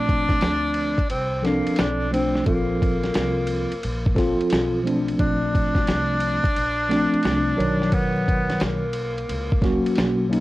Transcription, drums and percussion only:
0.09 kick, ride
0.29 kick, snare, ride
0.41 snare, hi-hat pedal, ride
0.74 ride
0.98 kick, ride
1.10 ride
1.45 snare, ride
1.67 ride
1.76 snare, hi-hat pedal, ride
2.14 ride
2.35 snare
2.46 kick, ride
2.82 kick, ride
3.03 snare, ride
3.14 snare, hi-hat pedal, ride
3.47 ride
3.72 ride
3.83 ride
4.06 kick
4.16 kick, snare, ride
4.40 ride
4.50 snare, hi-hat pedal, ride
4.87 ride
5.08 ride
5.19 kick, ride
5.55 kick, ride
5.75 kick, snare, ride
5.87 snare, hi-hat pedal, ride
6.20 ride
6.44 kick, ride
6.56 ride
6.91 snare, ride
7.14 ride
7.23 snare, hi-hat pedal, ride
7.60 ride
7.82 snare
7.92 kick, ride
8.28 kick, ride
8.49 snare, ride
8.60 snare, hi-hat pedal, ride
8.93 ride
9.18 ride
9.29 ride
9.52 kick
9.62 kick, snare, ride
9.86 ride
9.96 snare, hi-hat pedal, ride
10.33 ride

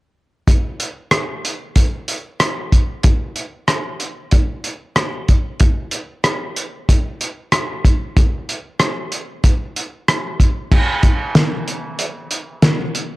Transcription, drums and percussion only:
0.48 kick, closed hi-hat
0.80 closed hi-hat
1.11 cross-stick, closed hi-hat
1.45 closed hi-hat
1.76 kick, closed hi-hat
2.08 closed hi-hat
2.40 cross-stick, closed hi-hat
2.72 kick, closed hi-hat
3.03 kick, closed hi-hat
3.36 closed hi-hat
3.68 cross-stick, closed hi-hat
4.00 closed hi-hat
4.31 kick, closed hi-hat
4.64 closed hi-hat
4.96 cross-stick, closed hi-hat
5.28 kick, closed hi-hat
5.60 kick, closed hi-hat
5.91 closed hi-hat
6.24 cross-stick, closed hi-hat
6.56 closed hi-hat
6.89 kick, closed hi-hat
7.21 closed hi-hat
7.52 cross-stick, closed hi-hat
7.85 kick, closed hi-hat
8.17 kick, closed hi-hat
8.49 closed hi-hat
8.80 cross-stick, closed hi-hat
9.12 closed hi-hat
9.44 kick, closed hi-hat
9.76 closed hi-hat
10.08 cross-stick, closed hi-hat
10.40 kick, closed hi-hat
10.72 kick, crash
11.03 kick, closed hi-hat
11.35 snare, closed hi-hat
11.68 closed hi-hat
11.99 closed hi-hat
12.31 closed hi-hat
12.62 snare, closed hi-hat
12.95 closed hi-hat

